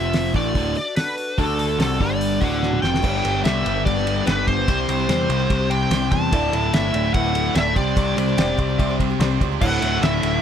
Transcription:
Already playing: F1 F2 C3 F3 C4 F4 C5 E5
0.13 snare, open hi-hat
0.33 A1 A2 D3 E3 A3 D4 F#4 A4 D5, kick, open hi-hat
0.54 D1 D2 A2 D3, kick, open hi-hat
0.66 D4 F#4 A4
0.75 D5, open hi-hat
0.86 D4 F#4 A4
0.96 D3 D4 F#4 A4 B4, snare, open hi-hat
1.17 D3 D4 F#4 A4, open hi-hat
1.28 D4 F#4 A4
1.38 D2 D3 A3 D4 F#4 A4, kick, open hi-hat
1.59 A4, open hi-hat
1.69 D4 F#4 A4
1.79 C2 C3 D3 G3 C4 D4 F#4 A4, snare, open hi-hat
2.00 G1 G2 D3 G3 D4 G4 D5, kick, open hi-hat
2.11 D4 G4 D5
2.21 open hi-hat
2.31 D4 G4 D5
2.41 D1 D2 A2 D3 F#3 A3 D4 F#4 A4 D5 F#5, kick, open hi-hat
2.63 snare
2.73 mid tom
2.82 F1 F2 C3 F3 A3 D4 F#4 D5 G5, snare
2.92 A3 D4 F#4 D5, snare
3.02 G1 G2 D3 G3 A3 B3 D4 A4 B4, kick, crash
3.06 G4
3.23 G1 G3 A3 B3 D4 G4 A4 B4, ride
3.34 D4 A4 B4
3.44 C2 G2 D3 G3 A3 B3 D4 A4 B4 E5, snare, ride
3.48 G4
3.64 G1 G3 A3 B3 D4 G4 A4 B4, ride
3.75 D4 A4 B4
3.85 G1 G3 B3 D4 G4 D5, kick, ride
3.96 D4 A4 B4, snare
4.05 G2 D3 G3 B3 D4 G4, ride
4.16 D4 A4 B4
4.26 G1 G3 A3 B3 D4 G4 A4 B4, snare, ride
4.37 D4 A4 B4
4.47 G1 G3 A3 B3 D4 G4 A4 B4 C5, kick, ride
4.57 D4 A4 B4
4.68 C2 C3 G3 C4 D4 G4 C5, kick, ride
4.88 C2 C4 D4 G4 C5, ride
5.00 D4 G4 C5
5.08 E2 C3 G3 C4 D4 G4 C5, snare, ride
5.28 C2 C4 D4 G4 C5, ride
5.39 D4 G4 C5
5.48 C2 G3 C4 G4 C5, kick, ride
5.59 D4 G4 C5
5.69 C3 G3 C4 G4 C5 G5, ride
5.80 D4 G4 C5
5.90 C2 G3 C4 D4 G4 C5, snare, ride
6.01 D4 G4 C5
6.11 E2 C4 D4 G4 C5 A5, kick, ride
6.31 D1 D2 A2 D3 E3 A3 D4 E4 A4 D5, kick, ride
6.52 D1 D3 A3 D4 E4 A4 D5, ride
6.62 A3 D4 A4 D5
6.73 G1 D2 A2 D3 E3 A3 D4 E4 A4 D5 E5, snare, ride
6.93 D1 D3 A3 D4 E4 A4 D5, ride
7.05 A3 D4 A4 D5
7.13 D1 A2 D3 A3 E4 A4 B4 F#5, kick, ride
7.25 A3 D4 A4 D5
7.33 D2 A2 D3 A3 E4, ride
7.45 A3 D4 A4 D5
7.54 D1 A2 D3 E3 A3 D4 E4 A4 D5 E5, snare, ride
7.66 A3 D4 A4 D5
7.75 C2 C3 G3 C4 D4 G4 C5 D5, kick, ride
7.79 C3
7.96 C2 C3 G3 C4 D4 G4 C5, kick, ride
8.16 C2 C4 D4 G4 C5, ride
8.28 D4 G4 C5
8.37 E1 C3 G3 C4 D4 G4 C5 D5, snare, ride
8.58 C2 C4 D4 G4 C5, kick, ride
8.62 C4
8.69 D4 G4 C5
8.78 C2 G3 C4 G4 C5 E5, kick, ride
8.82 C5
8.90 D4 G4 C5
8.99 C3 G3 C4 G4 C5, kick, ride
9.10 D4 G4 C5
9.19 C2 G3 C4 D4 G4 C5 D5, snare, ride
9.24 C5
9.29 D4 G4 C5
9.41 C#2 C4 D4 G4 C5, kick, ride
9.51 D4 G4 C5
9.61 D1 D2 A2 D3 A3 D4 E4 A4 D5 F#5, kick, crash
9.82 D1 D3 A3 E4, ride
9.92 A3 E4 A4
10.01 D1 A2 D3 A3 D4 E4 A4 D5 E5, snare, ride
10.13 A3 E4 A4
10.22 D1 D3 A3 E4 A4, ride
10.33 A3 E4 A4

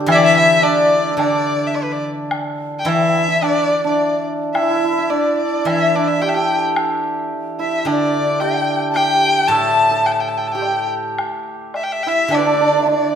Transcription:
Already playing: D3 A3 D4 A4
0.00 G4
0.06 E3 E4 E5, high woodblock
0.12 D5 E5
0.17 G5
0.22 E5
0.35 E5 G5
0.62 D4 D5
1.11 E4
1.17 D3 D4 D5 E5, high woodblock
1.22 D5
1.67 E5
1.75 D5, low woodblock
1.84 B4
1.93 D5
2.31 high woodblock
2.79 G5
2.85 E3 E4 E5, low woodblock
2.89 E5
2.95 G5
3.03 E5
3.10 G5
3.18 E5
3.28 E4
3.35 E5
3.42 D4 D5, high woodblock
3.85 D4 D5
4.54 E4 E5 G5, high woodblock
4.60 E4 E5
4.70 E4
4.76 E4
4.84 E4
4.93 E4
4.99 E4
5.10 D4 D5
5.38 D5
5.65 E3 E4 E5, high woodblock
5.95 D4 D5
6.08 E5
6.20 G4 A4 G5, low woodblock
6.29 E5
6.35 G4 G5
6.76 high woodblock
7.59 E4 E5
7.81 D3 E5
7.86 D4 D5 E5, high woodblock
7.92 D5
8.40 G4 G5, low woodblock
8.89 A5
8.94 G4 G5, high woodblock
9.48 A2 A4 A5
9.91 A4 A5
10.06 G5, high woodblock
10.12 A5
10.21 G5
10.29 A5
10.37 G5
10.47 A5
10.52 G4 G5 A5
10.57 G5
10.62 low woodblock
11.18 high woodblock
11.74 E5, high woodblock, low woodblock
11.83 G5
11.92 E5
12.03 E4 G5
12.07 E5
12.28 D3 D4 D5, high woodblock
12.35 B4 D5
12.40 D4
12.45 D4 D5
12.54 D4
12.61 D4
12.68 D4
12.76 D4 E4
12.82 E5
12.87 D4 E5, low woodblock
12.91 D5

